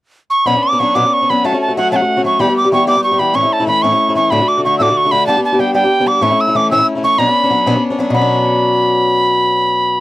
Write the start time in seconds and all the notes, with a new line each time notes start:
0.30 C#6
0.46 B2 F#3 B3 C#4 D4 B5
0.55 B3 C#4 D4
0.63 D6
0.72 B3 C#4 D4
0.79 F#3 B3 C#4 D4 C#6
0.95 B2 F#3 B3 C#4 D4 D6
1.04 B3 C#4 D4
1.13 C#6
1.22 B3 C#4 D4
1.30 F#3 B3 C#4 D4 B5
1.44 F#3 A3 C#4 F#4 A5
1.53 A3 C#4 F#4
1.61 A5
1.68 A3 C#4 F#4
1.77 F#3 A3 C#4 F#4 F#5
1.92 F#3 A3 C#4 F#4 A5
1.96 F#5
2.01 A3 C#4 F#4
2.17 A3 C#4 F#4
2.24 F#3 A3 C#4 F#4 C#6
2.39 E3 G3 B3 G4 B5
2.48 G3 B3 G4
2.57 D6
2.64 G3 B3 G4
2.72 E3 G3 B3 G4 C#6
2.87 E3 G3 B3 G4 D6
2.95 G3 B3 G4
3.04 C#6
3.11 G3 B3 G4
3.19 E3 G3 B3 G4 B5
3.34 A2 E3 A3 C#4 E4 C#6
3.43 A3 C#4 E4
3.53 A5
3.60 A3 C#4 E4
3.67 E3 A3 C#4 E4 B5
3.82 A2 E3 A3 C#4 E4 C#6
3.92 A3 C#4 E4
4.09 A3 C#4 E4
4.15 E3 A3 C#4 E4 C#6
4.30 D2 A2 D3 A3 D4 F#4 B5
4.40 D3 A3 D4 F#4
4.48 D6
4.58 D3 A3 D4 F#4
4.64 D3 A3 D4 F#4 C#6
4.78 D2 A2 D3 A3 D4 F#4 E6
4.82 D6
4.90 D3 A3 D4 F#4
4.97 C#6
5.05 D3 A3 D4 F#4
5.11 D3 A3 D4 F#4 B5
5.27 G3 B3 D4 G4 A5
5.37 B3 D4 G4
5.45 A5
5.53 B3 D4 G4
5.59 G3 B3 D4 G4 G5
5.74 G3 B3 D4 G4 G5
5.84 B3 D4 G4
6.00 B3 D4 G4
6.06 G3 B3 D4 G4 D6
6.21 A2 E3 A3 C#4 E4 C#6
6.30 A3 C#4 E4
6.41 E6
6.47 A3 C#4 E4
6.55 E3 A3 C#4 E4 D6
6.71 A2 E3 A3 C#4 E4 E6
6.78 A3 C#4 E4
6.95 A3 C#4 E4
7.03 E3 A3 C#4 E4 C#6
7.18 B2 F#3 B3 C#4 D4 B5
7.27 B3 C#4 D4
7.43 B3 C#4 D4
7.50 F#3 B3 C#4 D4
7.66 B2 F#3 B3 C#4 D4
7.74 B3 C#4 D4
7.90 B3 C#4 D4
7.99 F#3 B3 C#4 D4
8.10 B2 B5
8.14 F#3 B3
8.19 C#4 D4